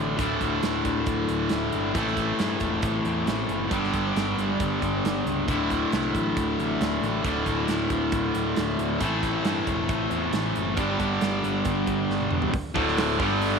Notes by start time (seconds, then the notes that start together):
Already playing: A1 D2 A2 D3 A3 E4
0.17 D1 D2 A2 D3 A3 E4, kick, closed hi-hat
0.41 D1, kick, closed hi-hat
0.63 D1, snare, closed hi-hat
0.85 D1, kick, closed hi-hat
1.06 D1, kick, closed hi-hat
1.29 D1, closed hi-hat
1.49 D1, snare, closed hi-hat
1.72 G1, closed hi-hat
1.94 A1 A2 E3 A3 C4 E4 A4, kick, closed hi-hat
2.07 snare
2.17 kick, closed hi-hat
2.39 G2, snare, closed hi-hat
2.60 E1, kick, closed hi-hat
2.82 A1, kick, closed hi-hat
3.05 E2, closed hi-hat
3.26 A1, snare, closed hi-hat
3.49 F#1, closed hi-hat
3.70 G1 G2 D3 G3 B3 D4 G4, kick, closed hi-hat
3.84 snare
3.94 G1, kick, closed hi-hat
4.16 G1, snare, closed hi-hat
4.38 G1, closed hi-hat
4.60 G1, kick, closed hi-hat
4.82 G1, kick, closed hi-hat
5.04 G1, snare, closed hi-hat
5.26 C#2, closed hi-hat
5.47 D1 D2 A2 D3 A3 E4, kick, closed hi-hat
5.70 kick, closed hi-hat
5.92 C2, snare, closed hi-hat
6.15 A1, kick, closed hi-hat
6.37 D1, kick, closed hi-hat
6.59 A1, closed hi-hat
6.81 D1, snare, closed hi-hat
7.02 A1, closed hi-hat
7.23 D1 D2 A2 D3 A3 E4, kick, closed hi-hat
7.46 D1, kick, closed hi-hat
7.68 D1, snare, closed hi-hat
7.90 D1, kick, closed hi-hat
8.12 D1, kick, closed hi-hat
8.35 D1, closed hi-hat
8.56 D1, snare, closed hi-hat
8.79 D1, closed hi-hat
9.00 A1 A2 E3 A3 C4 E4 A4, kick, closed hi-hat
9.23 kick, closed hi-hat
9.44 G2, snare, closed hi-hat
9.67 E1, kick, closed hi-hat
9.89 A1, kick, closed hi-hat
10.11 E2, closed hi-hat
10.33 A1, snare, closed hi-hat
10.56 F#1, closed hi-hat
10.76 G1 G2 D3 G3 B3 D4 G4, kick, closed hi-hat
11.00 G1, kick, closed hi-hat
11.21 G1, snare, closed hi-hat
11.44 G1, closed hi-hat
11.65 G1, kick, closed hi-hat
11.87 G1, kick, closed hi-hat
12.09 G1, snare
12.20 high tom
12.31 E1, mid tom
12.42 floor tom
12.54 kick, open hi-hat
12.74 D1 D2 A2 D3, kick
12.88 snare
12.98 snare, open hi-hat
13.19 G1 G2 D3 G3, kick, snare
13.41 open hi-hat